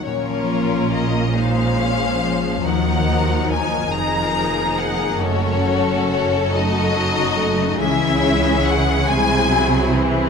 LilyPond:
<<
  \new Staff \with { instrumentName = "Violin section" } { \time 6/8 \key bes \minor \tempo 4. = 47 des''4 ees''8 f''4. | ges''4 aes''8 bes''4 ges''8 | des''4 des''8 ees''4. | fes''4 ges''8 aes''4 r8 | }
  \new Staff \with { instrumentName = "Violin section" } { \time 6/8 \key bes \minor << { bes'4. c''4. | bes'4. bes'4. | a'2. | aes'2. | } \\ { f'4. des'4. | ees'4. aes'4. | ges'4. ees'4. | des'4. fes'4. | } >> }
  \new Staff \with { instrumentName = "Harp" } { \time 6/8 \key bes \minor <bes, bes'>16 f16 aes16 aes'16 f''4 aes16 f16 aes16 f16 | ees16 ees'16 bes8 ees''8 ees''8 bes16 ees'16 bes16 ees'16 | ges,16 des16 a16 ges'16 des''16 ges'16 des''16 ges'16 a16 des16 a16 des16 | fes8 aes16 aes'16 des''16 aes'16 des''16 aes'16 aes8 aes16 des'16 | }
  \new Staff \with { instrumentName = "Viola section" } { \time 6/8 \key bes \minor << { des'4. ees'8 des'8 f8~ | f4. ees'4. | des'4. ges'4. | fes'4. c'4. | } \\ { bes4. aes4. | ges4. f4. | a4. a8 ges8 a8 | aes4. aes8 ges8 fes8 | } >> }
  \new Staff \with { instrumentName = "Cello section" } { \clef bass \time 6/8 \key bes \minor bes,2. | ees,4. f,4. | ges,2. | des4. c4. | }
  \new Staff \with { instrumentName = "Double bass section" } { \clef bass \time 6/8 \key bes \minor bes,,2. | ees,4. f,,4. | ges,,2. | des,4. c,4. | }
>>